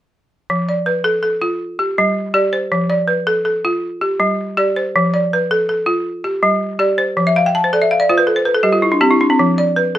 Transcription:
0.50 F3
0.69 D5
0.86 B4
1.04 A4
1.23 A4
1.42 F4
1.79 G4
1.98 G3
2.34 G4 D5
2.53 C5
2.72 F3
2.90 D5
3.08 B4
3.27 A4
3.45 A4
3.65 F4
4.01 G4
4.20 G3
4.57 G4 D5
4.76 C5
4.96 F3
5.14 D5
5.33 B4
5.51 A4
5.69 A4
5.86 F4
6.24 G4
6.43 G3
6.79 G4 D5
6.98 C5
7.17 F3
7.27 E5
7.36 F5
7.46 G5
7.55 A5
7.64 C5
7.73 A4 D5
7.82 E5
7.91 F5
8.00 D5
8.09 F4 C5
8.18 B4
8.27 A4
8.36 C5
8.45 B4
8.54 A4
8.63 G3 G4
8.73 F4
8.82 E4
8.92 D4
9.01 C4 G4
9.11 E4
9.21 D4
9.30 C4
9.39 F3
9.58 D5
9.76 B4
9.95 A4

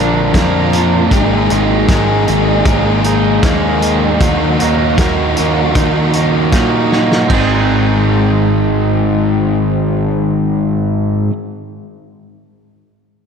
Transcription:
Already playing: A#1 A#2 D3 F3 A#3 D4 A#4
0.00 F3 A#3
0.34 F2 F3 A#3 D4, kick, snare, closed hi-hat
0.39 A#4
0.73 F3 A#3 D4 A#4, closed hi-hat
0.78 F3
1.11 G#1 D#3 G#3 A#3 D#4 G#4, kick, closed hi-hat
1.50 G#1 D#3 D#4 G#4, closed hi-hat
1.54 A#3
1.88 G#1 D#3 G#3 A#3 D#4, kick, snare, closed hi-hat
1.93 G#4
2.27 G#1 D#3 A#3 D#4 G#4, closed hi-hat
2.65 G#1 G#3 A#3 D#4 G#4, kick, closed hi-hat
3.04 D#4 G#4, closed hi-hat
3.08 A#3
3.43 D#2 G#3 A#3 D#4, kick, snare, closed hi-hat
3.47 G#4
3.81 D#3 A#3 D#4 G#4, closed hi-hat
4.19 D#2 D#3 F#3 A#3 D#4 F#4, kick, closed hi-hat
4.58 A#3 D#4 F#4, closed hi-hat
4.62 D#2
4.97 D#2 D#3 F#3 A#3 D#4 F#4, kick, snare, closed hi-hat
5.37 D#2 A#3 D#4 F#4, closed hi-hat
5.41 A#3
5.75 D#2 D#3 A#3 D#4 F#4, kick, closed hi-hat
6.13 D#4 F#4, closed hi-hat
6.18 A#3
6.52 A#2 D#3 A#3 D#4, kick, snare, closed hi-hat
6.58 F#4
6.91 A#3 D#4 F#4, snare
6.97 A#3
7.12 snare
7.28 G#1 G#2 D#3 G#3 C4 D#4, kick, crash
7.33 C4 D#4 G#4

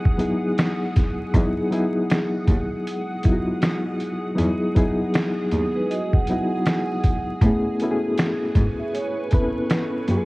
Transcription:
Already playing: F#3 B3 D#4 E4 G4 G#4 F#5 D#6
0.05 kick
0.18 F#3 B3 D#4 E4 G#4, closed hi-hat
0.58 snare, closed hi-hat
0.96 kick, snare, closed hi-hat
1.34 E2 F#3 B3 D#4 E4 G#4 F#5 D#6, kick, closed hi-hat
1.71 F#3 B3 D#4 E4 G#4, closed hi-hat
2.10 snare, closed hi-hat
2.47 D#2, kick, closed hi-hat
2.87 closed hi-hat
3.23 F#3 B3 D#4 E4 F4, kick, closed hi-hat
3.33 F#4
3.62 snare, closed hi-hat
4.00 closed hi-hat
4.35 E2 F#3 B3 D#4 E4 G#4 G#5, closed hi-hat
4.75 F#3 B3 D#4 E4 G#4, kick, closed hi-hat
5.14 snare, closed hi-hat
5.51 D#2 B3 G#4, closed hi-hat
5.75 D#4 B4
5.90 F#4 D#5, closed hi-hat
6.13 F#5, kick
6.27 F#3 B3 D#4, closed hi-hat
6.31 E4 F#4
6.66 snare, closed hi-hat
7.04 kick, closed hi-hat
7.41 A2 A3 B3 C#4 B4 C#6, kick, closed hi-hat
7.45 E4 G#4
7.80 B3 C#4 A4, closed hi-hat
7.84 E4 F#4
7.91 G#4
8.18 snare, closed hi-hat
8.55 G#2, kick, closed hi-hat
8.79 G#4 E5
8.94 E4 C#5, closed hi-hat
9.17 B4
9.31 B3 C4 E4 A4 B4, kick, closed hi-hat
9.39 C#4
9.55 C#4 A4
9.70 snare, closed hi-hat
10.07 F#2 F#3 A#3 C#4 F4 G4, closed hi-hat
10.17 G#4

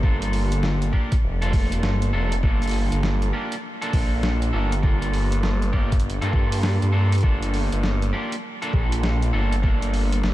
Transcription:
Already playing: G1
0.03 A#3 D4 F4 A4, kick, cross-stick
0.22 closed hi-hat
0.33 open hi-hat
0.52 closed hi-hat
0.63 G1, snare
0.82 closed hi-hat
0.93 A#3 D4 F4 G4, kick
1.12 kick, closed hi-hat
1.23 F1
1.42 A#3 D4 F4 A4, closed hi-hat
1.53 kick, open hi-hat
1.72 closed hi-hat
1.83 G1, snare
2.02 closed hi-hat
2.13 F1 A#3 D4 F4 A4
2.32 closed hi-hat
2.43 G1 A#3 D4 F4 A4, kick, cross-stick
2.62 closed hi-hat
2.64 closed hi-hat
2.67 closed hi-hat
2.69 closed hi-hat
2.71 closed hi-hat, open hi-hat
2.92 G1, closed hi-hat
3.03 snare
3.22 closed hi-hat
3.33 A#3 D4 F4 G4
3.52 closed hi-hat
3.81 A#3 D4 F4 A4, closed hi-hat
3.93 A#1, kick, open hi-hat
4.23 snare
4.42 closed hi-hat
4.53 G1 A#3 D4 F4 A4
4.72 closed hi-hat
4.83 A#3 D4 F4 A4, kick, cross-stick
5.02 closed hi-hat
5.14 open hi-hat
5.32 closed hi-hat
5.43 G1, snare
5.62 closed hi-hat
5.73 G1 A#3 D4 F4 G4, kick
5.92 kick, closed hi-hat
6.00 closed hi-hat
6.10 closed hi-hat
6.21 G2 A#3 D4 F4 A4, closed hi-hat
6.33 kick
6.52 closed hi-hat, open hi-hat
6.63 snare
6.82 G2, closed hi-hat
6.92 A#3 D4 F4 A4
7.12 closed hi-hat
7.15 closed hi-hat
7.18 closed hi-hat
7.21 G1 A#3 D4 F4 A4, kick, cross-stick, closed hi-hat
7.42 closed hi-hat
7.54 open hi-hat
7.72 G1, closed hi-hat
7.83 snare
8.02 closed hi-hat
8.13 A#3 D4 F4 G4
8.32 closed hi-hat
8.62 A#3 D4 F4 A4, closed hi-hat
8.73 A#1, kick
8.92 closed hi-hat
9.03 snare
9.22 closed hi-hat
9.33 G1 A#3 D4 F4 A4
9.52 closed hi-hat
9.63 A#3 D4 F4 A4, kick, cross-stick
9.82 closed hi-hat
9.94 open hi-hat
10.12 closed hi-hat
10.23 G1, snare

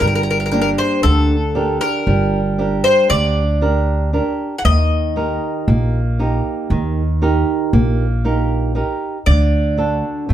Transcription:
0.01 G1 G3
0.07 A#4
0.15 A#4
0.23 A#4
0.30 A#4
0.40 A#4
0.46 A#4
0.52 A#3 D4 G4 A#4
0.62 A#4
0.78 C5
1.03 D2 D3 A4
1.55 D4 G4 A#4
1.81 A#4
2.07 G1 G3
2.59 D4 G4 A#4
2.84 C5
3.09 D2 D3 D5
3.61 D4 G4 A#4
4.13 D4 G4 A#4
4.58 F#5
4.65 D#2 D#3 D#5
5.16 D#4 G4 A#4
5.68 A#1 A#3
6.19 D#4 G4 A#4
6.70 D#2 D#3
7.22 D#4 G4 A#4
7.73 A#1 A#3
8.25 D#4 G4 A#4
8.75 D#4 G4 A#4
9.26 D2 D3 D5
9.78 D4 F#4 A4
10.29 A1 A3

